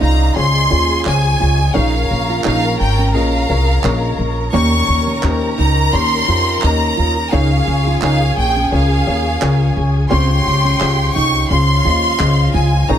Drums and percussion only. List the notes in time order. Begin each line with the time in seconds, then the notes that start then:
1.05 clap
2.44 clap
3.84 clap
5.23 clap
6.62 clap
8.02 clap
9.42 clap
10.80 clap
12.19 clap